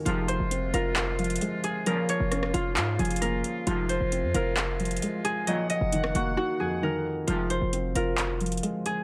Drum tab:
HH |x---x---x---x---x---xxxxx---x---|x---x---x---x---x---xxxxx---x---|x---x---x---x---x---xxxxx---x---|x---x---x---x-------------------|
CP |----------------x---------------|----------------x---------------|----------------x---------------|--------------------------------|
SD |--------------------------------|--------r-r---------------------|--------------------------------|----------r---------------------|

HH |x---x---x---x---x---xxxxx---x---|
CP |----------------x---------------|
SD |--------------------------------|